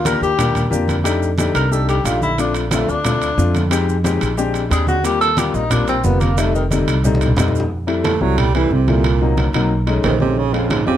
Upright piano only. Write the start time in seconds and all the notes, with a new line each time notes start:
0.05 A#3 D4 F4 G4
0.37 A#3 D4 F4 G4
0.70 A#3 D4 F4 G4
1.04 A3 D4 D#4 G4
1.38 A3 D4 D#4 G4
1.71 A3 D4 D#4 G4
2.05 A3 D4 D#4 G4
2.38 A3 C4 D4 F4
2.72 A3 C4 D4 F4
3.05 A3 C4 D4 F4
3.37 A3 C4 D4 F4
3.71 G#3 C4 D#4 G4
4.04 G#3 C4 D#4 G4
4.37 G#3 C4 D4 G4
4.70 G#3 C4 D4 G4
5.03 G3 A#3 C4 F4
5.37 G3 A#3 C4 F4
5.70 G3 A#3 C4 F4
6.04 G3 A#3 C4 F4
6.37 G3 A3 C4 D#4
6.71 G3 A3 C4 D#4
7.04 G3 A3 C4 D#4
7.37 G3 A3 C4 D#4
7.87 G3 A3 C4 E4
8.21 G3 A3 C4 E4
8.54 G3 A3 C4 E4
8.88 G3 A3 C4 E4
9.21 F#3 A#3 C4 D#4
9.54 F#3 A#3 C4 D#4
9.87 G#3 A3 C#4 D#4
10.20 G#3 A3 C#4 D#4
10.53 G#3 C4 C#4 F4
10.86 G#3 C4 C#4 F4